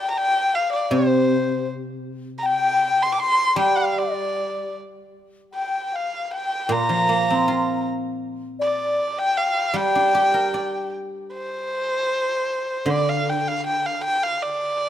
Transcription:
0.00 0.55 G5 medium
0.10 0.19 A#5 medium
0.18 0.56 G5 loud
0.54 0.93 F5 medium
0.54 0.72 F5 medium
0.73 0.94 D5 medium
0.91 3.19 C3 medium
0.91 1.01 C5 medium
0.91 1.69 C5 medium
0.99 1.09 D5 medium
1.07 1.70 C5 medium
2.38 2.47 A#5 medium
2.43 3.21 G5 loud
2.43 3.04 G5 loud
3.02 3.13 C6 loud
3.14 3.21 D6 medium
3.19 3.59 C6 loud
3.19 3.58 C6 loud
3.56 5.92 G3 medium
3.56 4.00 G5 medium
3.56 3.79 G5 medium
3.77 4.00 F5 medium
3.98 4.76 D5 medium
5.53 5.87 G5 medium
5.87 5.95 G5 medium
5.87 5.97 G5 medium
5.93 6.35 F5 medium
5.93 6.33 F5 medium
6.34 6.73 G5 medium
6.69 8.98 A#2 medium
6.69 7.85 A#5 loud
6.69 7.85 A#5 medium
6.89 8.41 F3 soft
7.09 8.61 A#3 soft
7.30 8.81 C4 soft
7.48 8.99 F4 soft
8.59 9.13 D5 medium
8.59 9.20 D5 medium
9.17 9.71 G5 medium
9.17 9.39 G5 loud
9.37 9.77 F5 medium
9.74 12.11 G3 medium
9.74 10.89 G5 medium
9.74 10.94 G5 loud
9.95 11.53 D4 soft
10.14 11.73 G4 soft
10.34 11.92 A#4 soft
10.54 12.11 D5 soft
11.34 12.91 C5 medium
12.86 14.89 D3 medium
12.90 13.10 D5 loud
13.09 13.31 F5 medium
13.29 13.49 G5 medium
13.48 13.65 F5 medium
13.67 13.87 G5 medium
13.86 14.03 F5 medium
14.04 14.24 G5 loud
14.23 14.43 F5 medium
14.42 14.89 D5 loud

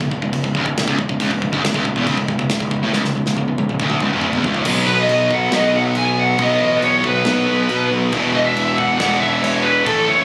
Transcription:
0.00 0.10 C#1 medium
0.00 0.10 C#2 medium
0.00 kick medium
0.11 0.21 C#1 medium
0.11 0.21 C#2 medium
0.11 kick medium
0.22 0.32 C#1 medium
0.22 0.32 C#2 medium
0.22 kick medium
0.33 0.43 C#1 medium
0.33 0.44 C#2 medium
0.33 kick medium
0.33 crash medium
0.44 0.54 C#1 medium
0.44 0.55 C#2 medium
0.44 kick medium
0.55 0.65 D1 loud
0.55 0.65 D2 loud
0.55 kick loud
0.66 0.76 C#1 medium
0.66 0.77 C#2 medium
0.66 kick loud
0.78 0.87 C#1 medium
0.78 0.87 C#2 medium
0.78 snare loud
0.78 crash medium
0.88 0.97 C#1 loud
0.88 0.98 C#2 loud
0.88 kick loud
0.99 1.08 C#1 medium
0.99 1.08 C#2 medium
0.99 kick loud
1.09 1.19 C#1 medium
1.09 1.20 C#2 medium
1.09 kick medium
1.20 1.30 C#1 loud
1.20 1.30 C#2 loud
1.20 kick loud
1.20 crash medium
1.31 1.41 C#1 medium
1.31 1.41 C#2 medium
1.31 kick medium
1.42 1.52 C#1 medium
1.42 1.53 C#2 medium
1.42 kick medium
1.53 1.63 D1 loud
1.53 1.63 D2 loud
1.53 kick medium
1.64 1.74 C#1 medium
1.64 1.74 C#2 medium
1.64 snare loud
1.64 crash medium
1.74 1.84 C#1 loud
1.74 1.85 C#2 loud
1.74 kick loud
1.85 1.95 C#1 medium
1.85 1.96 C#2 medium
1.85 kick medium
1.96 2.06 E1 loud
1.96 2.06 E2 loud
1.96 kick medium
2.07 2.17 C#1 medium
2.07 2.17 C#2 loud
2.07 kick loud
2.07 crash medium
2.17 2.28 C#1 medium
2.17 2.29 C#2 medium
2.17 kick medium
2.28 2.38 C#1 medium
2.28 2.40 C#2 medium
2.28 kick loud
2.39 2.49 C#1 medium
2.39 2.50 C#2 medium
2.39 kick medium
2.50 2.60 C#1 medium
2.50 2.61 C#2 medium
2.50 snare loud
2.50 crash medium
2.60 2.71 C#1 medium
2.60 2.71 C#2 medium
2.60 kick loud
2.71 2.82 C#1 medium
2.71 2.82 C#2 medium
2.71 kick medium
2.83 2.93 A1 medium
2.83 2.93 A2 loud
2.93 3.04 C#1 loud
2.93 3.03 C#2 loud
2.93 snare medium
3.04 3.15 C#1 medium
3.04 3.14 C#2 medium
3.04 snare medium
3.15 3.25 C#1 medium
3.15 3.26 C#2 medium
3.26 3.36 C#1 medium
3.26 3.36 C#2 medium
3.26 snare medium
3.37 3.47 C#1 medium
3.37 3.47 C#2 medium
3.37 high tom medium
3.47 3.57 C#1 medium
3.47 3.58 C#2 medium
3.58 3.68 C#1 medium
3.58 3.69 C#2 medium
3.58 high tom medium
3.69 3.79 C#1 medium
3.69 3.81 C#2 medium
3.69 mid tom medium
3.80 4.00 D1 loud
3.80 4.01 D2 loud
3.80 kick loud
3.90 mid tom medium
4.00 4.12 C#1 loud
4.00 4.12 C#2 medium
4.00 mid tom loud
4.12 4.32 D1 loud
4.12 4.33 D2 loud
4.21 mid tom loud
4.33 4.43 E1 loud
4.33 4.44 E2 loud
4.33 floor tom medium
4.44 4.65 C#1 medium
4.44 4.66 C#2 loud
4.44 floor tom loud
4.54 floor tom loud
4.65 4.85 B1 loud
4.65 5.52 B2 medium
4.65 5.53 F#3 loud
4.65 5.54 B3 medium
4.65 kick loud
4.65 crash loud
4.65 crash medium
4.87 5.06 B1 loud
4.87 4.98 B4 medium
5.00 5.33 D#5 loud
5.08 5.28 B1 medium
5.08 crash medium
5.31 5.50 B1 medium
5.31 5.54 F#5 medium
5.31 kick loud
5.51 5.71 B1 medium
5.51 6.38 B2 medium
5.51 6.39 F#3 medium
5.51 6.42 B3 medium
5.51 5.74 D#5 loud
5.51 snare loud
5.51 crash medium
5.74 5.93 B1 medium
5.74 5.82 F#5 loud
5.95 6.33 B1 loud
5.95 6.19 G#5 loud
5.95 crash medium
6.20 6.41 F#5 loud
6.38 6.58 B1 loud
6.38 7.25 B2 medium
6.38 7.26 F#3 medium
6.38 7.28 B3 loud
6.38 6.62 D#5 loud
6.38 kick loud
6.38 crash medium
6.60 6.79 A1 loud
6.60 6.79 D#5 loud
6.77 6.83 B4 medium
6.82 7.02 E2 medium
6.82 7.04 C#5 medium
6.82 crash medium
7.04 7.23 B1 medium
7.04 7.89 B4 medium
7.04 kick medium
7.25 7.45 B1 medium
7.25 8.12 B2 medium
7.25 8.13 F#3 medium
7.25 8.13 B3 loud
7.25 snare loud
7.25 crash medium
7.48 7.67 B1 medium
7.69 7.88 B2 loud
7.69 crash medium
7.91 8.10 B1 loud
8.12 8.32 E1 loud
8.12 8.98 E2 medium
8.12 8.99 B2 loud
8.12 9.01 E3 loud
8.12 kick loud
8.12 crash medium
8.34 8.53 E1 medium
8.34 8.45 D#5 loud
8.45 8.79 E5 loud
8.56 8.75 E1 medium
8.56 crash medium
8.77 8.97 E1 medium
8.77 8.97 F#5 loud
8.77 kick loud
8.98 9.19 E1 loud
8.98 9.84 E2 medium
8.98 9.85 B2 medium
8.98 9.86 E3 medium
8.98 9.19 F#5 loud
8.98 snare loud
8.98 crash medium
9.20 9.40 E1 medium
9.20 9.41 E5 loud
9.43 9.80 E1 loud
9.43 9.65 C#5 loud
9.43 crash medium
9.63 9.84 B4 medium
9.85 10.05 A1 loud
9.85 10.24 A2 medium
9.85 10.24 E3 loud
9.85 10.24 A3 loud
9.85 10.08 A4 medium
9.85 kick loud
9.85 crash medium
10.07 10.24 F#1 medium
10.07 10.24 C#5 medium

